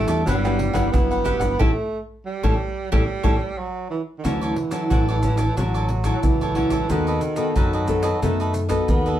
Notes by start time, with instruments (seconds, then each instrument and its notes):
Already playing: nylon-string guitar E3 G3 D4 E4, tenor saxophone A3
0.07 fingered electric bass E2, cavaquinho A4 D5 E5, pandeiro, maracas
0.25 fingered electric bass G1, nylon-string guitar G2 F#3 B3 E4, tenor saxophone G3, cavaquinho E4 G4 B4 F#5, pandeiro, maracas, surdo
0.44 nylon-string guitar F#3 B3 E4, cavaquinho G4 B4 F#5, pandeiro, tamborim, maracas
0.59 muted cavaquinho stroke, pandeiro
0.73 fingered electric bass G1, nylon-string guitar F#3 B3 E4, cavaquinho G4 B4 F#5, pandeiro, tamborim, maracas, surdo
0.92 fingered electric bass G1, nylon-string guitar G2 F#3 B3 E4, tenor saxophone B3, pandeiro, tamborim, maracas, surdo
1.11 cavaquinho G4 B4 F#5, pandeiro, maracas, surdo
1.24 cavaquinho E4 G4 B4 F#5, pandeiro, maracas, surdo
1.40 fingered electric bass G1, cavaquinho G4 B4 F#5, pandeiro, maracas, surdo
1.59 fingered electric bass A1, tenor saxophone A3, nylon-string guitar A3 C#4 E4, cavaquinho G4 A4 C#5, surdo
2.25 tenor saxophone G3
2.43 fingered electric bass A1, nylon-string guitar A3 C#4 E4, cavaquinho G4 A4 C#5, surdo
2.92 fingered electric bass A1, tenor saxophone G3, nylon-string guitar A3 C#4 E4, cavaquinho G4 A4 C#5, surdo
3.23 fingered electric bass A1, nylon-string guitar A3 C#4 E4, cavaquinho G4 A4 C#5, surdo
3.58 tenor saxophone F#3
3.90 tenor saxophone E3
4.18 tenor saxophone D#3
4.24 fingered electric bass D2, nylon-string guitar D3 F#3 C#4 E4, tenor saxophone E3, cavaquinho F#4 A4 C#5 D5, pandeiro, maracas, surdo
4.41 cavaquinho A4 C#5 D5, pandeiro, maracas
4.56 muted cavaquinho stroke, pandeiro
4.71 nylon-string guitar F#3 C#4 E4, cavaquinho A4 C#5 D5, pandeiro, maracas
4.90 fingered electric bass A1, nylon-string guitar A2, cavaquinho F#4 A4 C#5 D5, pandeiro, maracas, surdo
5.08 cavaquinho A4 C#5 D5, pandeiro, maracas
5.23 nylon-string guitar F#3 C#4 E4, pandeiro, maracas, surdo
5.37 cavaquinho A4 C#5 D5, pandeiro, maracas
5.57 fingered electric bass A1, nylon-string guitar D3 F#3 C#4 E4, tenor saxophone F#3, cavaquinho F#4 A4 C#5 D5, pandeiro, maracas, surdo
5.74 cavaquinho A4 C#5 D5, pandeiro, maracas
5.89 muted cavaquinho stroke, pandeiro
6.04 nylon-string guitar F#3 E4, cavaquinho A4 C#5 D5, pandeiro, maracas, surdo
6.23 fingered electric bass C#2, nylon-string guitar A2, tenor saxophone E3, pandeiro, maracas, surdo
6.41 cavaquinho A4 C#5 D5, pandeiro, maracas, surdo
6.55 nylon-string guitar F#3 C#4 E4, cavaquinho F#4 A4 C#5 D5, pandeiro, surdo
6.70 cavaquinho A4 C#5 D5, pandeiro, maracas, surdo
6.89 fingered electric bass D#2, tenor saxophone D#3, nylon-string guitar D#3 B3 F#4 A4, cavaquinho D#4 A4 B4 D#5, pandeiro, maracas, surdo
7.07 cavaquinho A4 B4 D#5, pandeiro, maracas
7.21 muted cavaquinho stroke, pandeiro, maracas
7.36 nylon-string guitar B3 F#4 A4, cavaquinho A4 B4 D#5, pandeiro, maracas
7.56 fingered electric bass F#2, nylon-string guitar D#3, tenor saxophone F#3, cavaquinho D#4 A4 B4 D#5, pandeiro, maracas, surdo
7.73 cavaquinho A4 B4 D#5, pandeiro, maracas
7.88 nylon-string guitar B3 F#4 A4, pandeiro, maracas, surdo
8.03 cavaquinho A4 B4 D#5, pandeiro, maracas
8.22 fingered electric bass F#2, nylon-string guitar D#3 B3 F#4 A4, tenor saxophone A3, cavaquinho D#4 A4 B4 D#5, pandeiro, maracas, surdo
8.40 cavaquinho A4 B4 D#5, pandeiro, maracas
8.54 muted cavaquinho stroke, pandeiro, maracas
8.69 nylon-string guitar B3 F#4 A4, cavaquinho A4 B4 D#5, pandeiro, maracas, surdo
8.88 fingered electric bass D#2, nylon-string guitar D#3, tenor saxophone B3, pandeiro, maracas, surdo
9.06 cavaquinho A4 B4 D#5, pandeiro, maracas, surdo